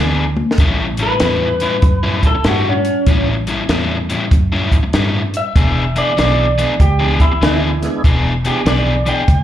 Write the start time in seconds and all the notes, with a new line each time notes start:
Already playing: D2 E3 B3 D4
0.00 G#4
0.37 high tom
0.51 snare
0.58 A1 A2 G3 C#4 E4, kick, closed hi-hat
0.97 A2 G3 C#4 E4, closed hi-hat
1.03 B4
1.20 E2 A2 G3 C#4 E4, snare, closed hi-hat
1.60 A2 G3 C#4 E4, closed hi-hat
1.82 F#2, kick, closed hi-hat
2.03 A2 G3 C#4 E4
2.23 kick, closed hi-hat
2.27 A4
2.35 muted overdriven electric guitar stroke
2.44 G2 A2 G3 C#4 E4, snare, closed hi-hat
2.48 F#4
2.69 C#4
2.85 closed hi-hat
3.06 A1 A2 G3 C#4 E4, kick, closed hi-hat
3.47 A2 G3 C#4 E4, closed hi-hat
3.69 E2 A2 G3 C#4 E4, snare, closed hi-hat
4.10 A2 G3 C#4 E4, closed hi-hat
4.31 F#2, kick, closed hi-hat
4.52 A2 G3 C#4 E4
4.72 kick, closed hi-hat
4.83 muted overdriven electric guitar stroke
4.93 G2 A2 G3 C#4 E4, snare, closed hi-hat
5.34 E5, closed hi-hat
5.55 E1 E3 B3 D4 G#4, kick, closed hi-hat
5.96 E3 B3 D4 G#4 D5, closed hi-hat
6.17 B1 E3 B3 D4 G#4, snare, closed hi-hat
6.58 E3 B3 D4 G#4, closed hi-hat
6.79 C#2 G4, kick, closed hi-hat
7.00 E3 B3 D4 G#4
7.20 E4, kick, closed hi-hat
7.32 muted overdriven electric guitar stroke
7.42 D2 E3 B3 D4 E4 G#4, snare, closed hi-hat
7.81 G#3 B3 D4 E4 G#4, snare, closed hi-hat
8.04 E1 E3 B3 D4 G#4, kick, closed hi-hat
8.45 E3 B3 D4 G4 G#4, closed hi-hat
8.65 B1 E3 B3 D4 G#4 D5, snare, closed hi-hat
9.06 E3 B3 D4 G#4 G5, closed hi-hat
9.28 C#2, kick, closed hi-hat